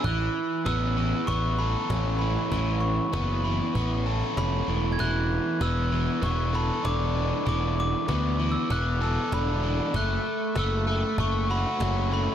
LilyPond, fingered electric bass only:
\new Staff \with { instrumentName = "Fingered electric bass" } { \clef bass \time 4/4 \key a \major \tempo 4 = 97 a,,8 r8 a,,4 a,,4 a,,4 | a,,4 fis,,4 a,,4 f,,8 e,,8~ | e,,4 e,,4 e,,4 e,,4 | e,,4 d,4 e,,4 e,,4 |
fis,,8 r8 fis,,4 fis,,4 fis,,4 | }